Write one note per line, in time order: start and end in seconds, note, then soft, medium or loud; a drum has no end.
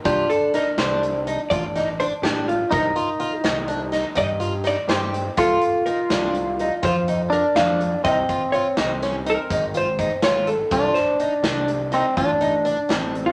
0.05 0.25 C2 loud
0.05 2.79 D4 medium
0.05 0.30 F4 medium
0.05 0.29 G4 medium
0.05 kick loud
0.05 closed hi-hat medium
0.30 0.54 A4 medium
0.30 closed hi-hat medium
0.54 0.66 D#4 medium
0.54 0.77 A#4 medium
0.54 snare soft
0.54 closed hi-hat medium
0.77 1.38 C2 loud
0.77 1.03 D4 medium
0.77 1.23 C5 medium
0.77 snare loud
0.77 closed hi-hat medium
1.03 closed hi-hat medium
1.27 1.39 D#4 medium
1.27 closed hi-hat medium
1.50 2.11 A1 medium
1.50 1.63 F4 medium
1.50 1.95 D5 medium
1.50 kick loud
1.50 closed hi-hat medium
1.75 1.88 D#4 medium
1.75 snare soft
1.75 closed hi-hat medium
2.00 2.12 D4 medium
2.00 2.06 C5 medium
2.00 closed hi-hat medium
2.22 2.63 A1 loud
2.22 2.48 D4 medium
2.22 2.48 G4 medium
2.22 snare loud
2.22 closed hi-hat medium
2.48 2.72 F4 medium
2.48 closed hi-hat medium
2.71 2.92 C2 loud
2.71 5.45 D#4 medium
2.71 2.84 D#4 medium
2.71 3.41 A#4 medium
2.71 kick loud
2.71 closed hi-hat medium
2.96 3.08 F4 medium
2.96 closed hi-hat medium
3.20 3.32 F4 medium
3.20 closed hi-hat medium
3.44 4.05 C2 loud
3.44 3.56 D#4 medium
3.44 snare loud
3.44 closed hi-hat medium
3.68 3.80 D4 medium
3.68 closed hi-hat medium
3.92 4.05 D#4 medium
3.92 snare soft
3.92 closed hi-hat medium
4.15 4.77 G2 medium
4.15 4.28 D#4 medium
4.15 4.67 D#5 loud
4.15 kick loud
4.15 closed hi-hat medium
4.40 4.52 F4 medium
4.40 closed hi-hat medium
4.64 4.77 D#4 medium
4.64 4.89 D5 medium
4.64 snare soft
4.64 closed hi-hat medium
4.88 5.29 G2 loud
4.88 5.14 G4 medium
4.88 5.34 C5 medium
4.88 snare loud
4.88 closed hi-hat medium
5.14 closed hi-hat medium
5.37 5.58 C2 loud
5.37 5.62 F4 medium
5.37 7.28 F4 loud
5.37 5.85 A4 medium
5.37 kick loud
5.37 closed hi-hat medium
5.61 closed hi-hat medium
5.86 5.99 D#4 medium
5.86 6.08 A#4 medium
5.86 closed hi-hat medium
6.10 6.70 C2 loud
6.10 6.36 D4 medium
6.10 snare loud
6.10 closed hi-hat medium
6.34 closed hi-hat medium
6.59 6.72 D#4 medium
6.59 closed hi-hat medium
6.83 7.43 F2 loud
6.83 6.95 F4 medium
6.83 7.29 C5 medium
6.83 kick loud
6.83 closed hi-hat medium
7.08 7.20 D#4 medium
7.08 closed hi-hat medium
7.30 8.04 D4 medium
7.30 7.45 D4 medium
7.30 7.55 A#4 medium
7.30 closed hi-hat medium
7.55 7.96 F2 loud
7.55 7.81 D4 medium
7.55 8.01 F5 loud
7.55 snare loud
7.55 closed hi-hat medium
7.81 closed hi-hat medium
8.04 8.24 C2 loud
8.04 10.43 C4 medium
8.04 8.17 D#4 medium
8.04 8.54 D#5 medium
8.04 kick loud
8.04 closed hi-hat medium
8.29 8.42 F4 medium
8.29 kick medium
8.29 closed hi-hat medium
8.52 8.66 F4 medium
8.52 8.75 C#5 medium
8.52 closed hi-hat medium
8.77 9.37 C2 loud
8.77 8.90 D#4 medium
8.77 snare loud
8.77 closed hi-hat medium
9.02 9.15 C#4 medium
9.02 snare soft
9.02 closed hi-hat medium
9.26 9.39 D#4 medium
9.26 9.77 A#4 medium
9.26 closed hi-hat medium
9.50 10.10 G#1 loud
9.50 9.63 D#4 medium
9.50 kick medium
9.50 closed hi-hat medium
9.74 9.87 F4 medium
9.74 10.24 C5 medium
9.74 closed hi-hat medium
9.99 10.11 D#4 medium
9.99 kick medium
9.99 closed hi-hat medium
10.22 10.62 G#1 loud
10.22 10.48 F4 medium
10.22 10.48 C#5 medium
10.22 snare loud
10.22 closed hi-hat medium
10.47 10.92 A4 medium
10.47 closed hi-hat medium
10.71 10.91 C2 loud
10.71 11.93 D4 medium
10.71 10.97 F4 medium
10.71 kick loud
10.71 closed hi-hat medium
10.94 11.17 C5 medium
10.94 snare soft
10.94 closed hi-hat medium
11.19 11.32 D#4 medium
11.19 closed hi-hat medium
11.43 12.04 C2 loud
11.43 11.69 D4 medium
11.43 snare loud
11.43 closed hi-hat medium
11.68 closed hi-hat medium
11.92 12.16 C4 medium
11.92 12.04 D#4 medium
11.92 snare soft
11.92 closed hi-hat medium
12.17 12.78 A1 loud
12.17 12.97 D4 medium
12.17 12.29 F4 medium
12.17 kick medium
12.17 closed hi-hat medium
12.41 12.53 D#4 medium
12.41 closed hi-hat medium
12.65 12.77 D4 medium
12.65 closed hi-hat medium
12.89 13.30 A1 loud
12.89 13.14 D4 medium
12.89 snare loud
12.89 closed hi-hat medium
12.97 13.32 C4 medium
13.15 closed hi-hat medium
13.26 13.32 G4 medium